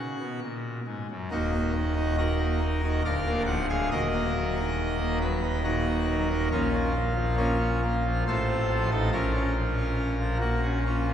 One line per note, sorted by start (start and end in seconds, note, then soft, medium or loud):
0.00 0.16 C#3 medium
0.00 0.39 F#4 medium
0.21 0.40 B2 medium
0.41 0.80 A#2 medium
0.87 1.06 G#2 medium
1.11 1.29 F#2 medium
1.31 3.00 D#1 medium
1.31 3.01 D#2 medium
1.31 1.50 A#3 medium
1.31 1.94 D#4 medium
1.31 2.16 F#4 loud
1.52 1.72 A#3 medium
1.74 1.94 D#3 medium
1.96 2.16 D#4 medium
2.18 2.82 D#4 medium
2.18 3.02 F#4 medium
2.18 3.02 A#4 loud
2.40 2.59 A#3 medium
2.61 2.81 D#3 medium
2.84 3.02 D#4 medium
3.05 3.89 D1 medium
3.05 3.89 D2 medium
3.05 3.42 A#4 medium
3.05 3.42 D5 medium
3.05 3.42 F5 loud
3.26 3.46 A#3 medium
3.46 3.67 F3 medium
3.46 3.66 F#5 loud
3.70 3.88 G#4 medium
3.70 3.88 F5 loud
3.91 6.47 D#1 medium
3.91 6.47 D#2 medium
3.91 5.18 F#4 medium
3.91 5.18 A#4 medium
3.91 5.18 D#5 loud
4.13 4.32 A#3 medium
4.34 4.54 F#3 medium
4.57 4.96 D#4 medium
4.98 5.19 A#3 medium
5.21 5.41 F#3 medium
5.21 5.59 B4 loud
5.43 5.63 D#4 medium
5.64 5.84 A#2 medium
5.64 6.29 D#4 medium
5.64 6.48 F#4 medium
5.64 6.48 A#4 medium
5.87 6.06 A#3 medium
6.08 6.27 F#3 medium
6.31 6.49 D#4 medium
6.51 8.22 A#1 medium
6.51 8.22 A#2 medium
6.51 6.91 A#3 medium
6.51 6.71 C#4 medium
6.51 7.35 F4 loud
6.73 6.92 C#4 medium
6.93 7.13 A#3 medium
7.15 7.55 F3 medium
7.37 7.80 A#3 medium
7.37 7.58 C#4 medium
7.37 8.24 F4 loud
7.60 7.80 C#4 medium
7.82 8.02 A#3 medium
8.05 8.24 F3 medium
8.27 9.10 A1 medium
8.27 9.10 A2 medium
8.27 8.90 F4 medium
8.27 8.90 A4 medium
8.27 8.89 C5 loud
8.50 8.68 C4 medium
8.71 8.89 F3 medium
8.91 9.09 D#4 medium
8.91 9.09 A4 loud
9.13 11.14 A#1 medium
9.13 11.14 A#2 medium
9.13 9.32 C#4 loud
9.13 10.37 F4 medium
9.13 10.37 A#4 loud
9.34 9.53 C#4 medium
9.56 9.75 F3 medium
9.78 10.15 C#4 medium
10.20 10.39 F3 medium
10.40 10.60 A#3 medium
10.40 10.78 F#4 loud
10.63 10.83 C#4 medium
10.85 11.14 A#3 medium
10.85 11.06 C#4 medium
10.85 11.14 F4 medium
11.08 11.14 C#4 medium